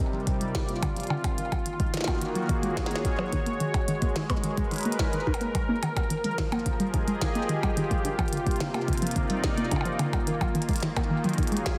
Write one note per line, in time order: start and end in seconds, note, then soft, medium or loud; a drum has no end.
0.00 1.38 C3 medium
0.00 1.38 G3 medium
0.00 2.16 D#4 medium
0.00 2.16 A#4 medium
0.13 0.22 F3 medium
0.13 3.33 F4 medium
0.13 1.38 D5 medium
0.27 0.35 D3 medium
0.27 kick loud
0.27 closed hi-hat medium
0.41 0.49 G3 medium
0.41 closed hi-hat soft
0.55 0.60 D3 medium
0.55 kick loud
0.55 snare loud
0.55 closed hi-hat medium
0.69 0.81 A#3 medium
0.69 closed hi-hat soft
0.83 0.91 D3 loud
0.83 kick loud
0.83 closed hi-hat medium
0.83 percussion blips soft
0.96 1.05 F3 medium
0.96 closed hi-hat soft
1.00 closed hi-hat soft
1.03 closed hi-hat soft
1.07 1.15 D3 loud
1.07 closed hi-hat soft
1.07 percussion blips soft
1.24 1.33 G3 medium
1.24 kick loud
1.24 closed hi-hat medium
1.24 percussion blips medium
1.38 3.33 D#3 medium
1.38 1.46 D#3 medium
1.38 closed hi-hat medium
1.52 1.60 F#3 medium
1.52 3.33 A#3 medium
1.52 kick loud
1.52 closed hi-hat soft
1.52 percussion blips medium
1.61 5.83 F#4 medium
1.66 1.71 D#3 medium
1.66 closed hi-hat medium
1.80 1.92 G#3 medium
1.80 kick loud
1.80 closed hi-hat soft
1.94 2.02 D#3 medium
1.94 snare medium
1.94 closed hi-hat medium
1.97 snare medium
2.01 snare medium
2.04 2.13 A#3 loud
2.04 kick loud
2.04 snare loud
2.04 closed hi-hat soft
2.04 percussion blips medium
2.21 2.30 D#3 medium
2.21 closed hi-hat medium
2.26 4.33 G#4 medium
2.26 5.83 C#5 medium
2.35 2.44 F#3 medium
2.35 closed hi-hat soft
2.49 2.58 D#3 medium
2.49 kick loud
2.49 closed hi-hat medium
2.63 2.71 G#3 medium
2.63 closed hi-hat soft
2.77 2.82 D#3 medium
2.77 kick loud
2.77 snare loud
2.77 closed hi-hat medium
2.86 snare medium
2.91 3.03 A#3 medium
2.91 closed hi-hat soft
2.96 snare medium
3.05 3.13 D#3 loud
3.05 kick loud
3.05 closed hi-hat medium
3.19 3.27 F#3 loud
3.19 percussion blips medium
3.33 3.38 D#3 loud
3.33 5.83 G#3 medium
3.33 kick loud
3.33 closed hi-hat medium
3.46 3.55 A#3 medium
3.46 closed hi-hat soft
3.60 3.69 D#3 medium
3.60 closed hi-hat medium
3.74 3.83 G#3 medium
3.74 kick loud
3.74 closed hi-hat soft
3.74 percussion blips soft
3.88 3.93 D#3 medium
3.88 closed hi-hat medium
4.02 4.15 A#3 medium
4.02 kick loud
4.02 closed hi-hat soft
4.15 4.24 D#3 medium
4.15 8.91 A#4 medium
4.15 snare loud
4.15 closed hi-hat medium
4.30 4.35 B3 loud
4.30 kick loud
4.30 closed hi-hat soft
4.30 percussion blips medium
4.44 4.52 D#3 medium
4.44 5.83 B4 medium
4.44 closed hi-hat medium
4.57 4.66 G#3 medium
4.57 kick loud
4.57 closed hi-hat soft
4.71 4.80 D#3 medium
4.71 closed hi-hat soft
4.74 closed hi-hat soft
4.76 closed hi-hat soft
4.78 closed hi-hat soft
4.81 closed hi-hat soft
4.83 closed hi-hat medium
4.85 4.94 A#3 medium
4.85 closed hi-hat soft
4.92 closed hi-hat medium
4.99 5.12 D#3 medium
4.99 kick loud
4.99 snare loud
5.13 5.22 D#3 medium
5.13 closed hi-hat soft
5.27 5.35 D#4 loud
5.27 kick loud
5.34 closed hi-hat medium
5.34 percussion blips soft
5.41 5.46 A#3 loud
5.41 closed hi-hat soft
5.55 5.63 F#3 medium
5.55 kick loud
5.55 closed hi-hat medium
5.55 percussion blips soft
5.69 5.74 A#3 loud
5.83 5.91 D#3 medium
5.83 8.05 F3 medium
5.83 closed hi-hat medium
5.83 percussion blips medium
5.97 6.05 G3 medium
5.97 kick medium
5.97 closed hi-hat soft
5.97 percussion blips medium
6.10 6.15 D#3 medium
6.10 closed hi-hat medium
6.24 6.37 G#3 medium
6.24 closed hi-hat soft
6.30 11.78 F4 medium
6.38 6.47 D#3 medium
6.38 kick loud
6.38 snare loud
6.38 closed hi-hat medium
6.51 6.57 A#3 loud
6.51 8.05 G#4 medium
6.51 closed hi-hat soft
6.51 percussion blips medium
6.59 8.94 G4 medium
6.66 6.74 D#3 medium
6.66 kick loud
6.66 closed hi-hat medium
6.80 6.88 G3 medium
6.80 8.05 D#5 medium
6.80 closed hi-hat soft
6.94 7.02 D#3 medium
6.94 kick loud
6.94 closed hi-hat medium
7.08 7.16 G#3 medium
7.08 closed hi-hat soft
7.21 7.27 D#3 medium
7.21 kick loud
7.21 snare loud
7.21 closed hi-hat medium
7.35 7.48 A#3 medium
7.35 closed hi-hat soft
7.49 7.58 D#3 loud
7.49 closed hi-hat medium
7.63 7.72 G3 loud
7.63 kick loud
7.63 closed hi-hat soft
7.63 percussion blips medium
7.77 7.82 D#3 loud
7.77 closed hi-hat medium
7.91 7.99 G#3 medium
7.91 kick loud
7.91 closed hi-hat soft
8.05 10.27 C3 medium
8.05 8.13 D3 medium
8.05 closed hi-hat medium
8.16 8.27 F3 medium
8.16 11.78 A#3 medium
8.16 kick loud
8.16 closed hi-hat soft
8.16 percussion blips soft
8.28 closed hi-hat soft
8.33 8.38 D3 medium
8.33 closed hi-hat medium
8.37 closed hi-hat soft
8.46 8.59 G3 medium
8.46 kick medium
8.46 closed hi-hat soft
8.51 closed hi-hat soft
8.56 closed hi-hat soft
8.60 8.69 D3 medium
8.60 snare loud
8.60 closed hi-hat medium
8.74 8.79 A#3 loud
8.74 10.99 D#4 medium
8.74 closed hi-hat soft
8.74 percussion blips medium
8.88 8.97 D3 medium
8.88 kick loud
8.88 closed hi-hat soft
8.93 closed hi-hat soft
8.98 closed hi-hat medium
9.02 9.10 F3 medium
9.02 10.27 D5 medium
9.02 closed hi-hat medium
9.07 closed hi-hat medium
9.11 closed hi-hat medium
9.16 9.24 D3 medium
9.16 kick medium
9.16 closed hi-hat medium
9.30 9.38 G3 medium
9.30 closed hi-hat soft
9.44 9.49 D3 medium
9.44 kick loud
9.44 snare loud
9.44 closed hi-hat medium
9.58 9.70 A#3 medium
9.58 closed hi-hat soft
9.71 9.80 D3 loud
9.71 kick loud
9.71 closed hi-hat medium
9.71 percussion blips soft
9.76 percussion blips soft
9.81 percussion blips soft
9.85 9.94 F3 medium
9.85 closed hi-hat soft
9.99 10.04 D3 loud
9.99 closed hi-hat medium
9.99 percussion blips soft
10.13 10.22 G3 medium
10.13 kick loud
10.13 closed hi-hat soft
10.13 percussion blips medium
10.27 11.78 D#3 medium
10.27 10.35 D#3 medium
10.27 closed hi-hat medium
10.41 10.49 F#3 medium
10.41 kick medium
10.41 closed hi-hat soft
10.41 percussion blips medium
10.55 10.60 D#3 medium
10.55 closed hi-hat soft
10.62 closed hi-hat soft
10.69 10.81 G#3 medium
10.69 kick loud
10.69 closed hi-hat medium
10.71 closed hi-hat soft
10.73 closed hi-hat soft
10.76 closed hi-hat medium
10.78 closed hi-hat soft
10.83 10.91 D#3 medium
10.83 snare loud
10.83 closed hi-hat medium
10.97 11.02 A#3 loud
10.97 kick loud
10.97 closed hi-hat soft
10.97 percussion blips medium
11.10 11.19 D#3 medium
11.15 11.78 F#4 medium
11.15 11.78 G#4 medium
11.15 11.78 C#5 medium
11.24 11.33 F#3 medium
11.24 closed hi-hat soft
11.29 closed hi-hat soft
11.34 closed hi-hat soft
11.38 11.46 D#3 medium
11.38 kick loud
11.38 closed hi-hat medium
11.43 closed hi-hat soft
11.47 closed hi-hat soft
11.52 11.60 G#3 medium
11.52 closed hi-hat soft
11.57 closed hi-hat soft
11.66 11.71 D#3 medium
11.66 kick loud
11.66 snare loud
11.66 closed hi-hat medium